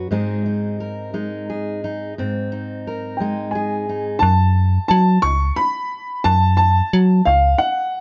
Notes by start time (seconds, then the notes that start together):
Already playing: F#2 F#3
0.11 G#2 G#3 C4 D#4 G#4
0.46 D#4
0.80 A#4
1.14 G#3 D#4
1.50 G#4
1.84 D#4
2.18 G#2 C4
2.52 D#4
2.87 A#4
3.17 G#3 G5
3.21 D#4
3.51 G#5
3.55 G#4
3.89 D#4
4.19 F#2 A5
4.88 F#3 A5
5.22 C#2 C#6
5.56 B5
6.24 F#2 A5
6.57 A5
6.93 F#3
7.25 C#2 F5
7.58 F#5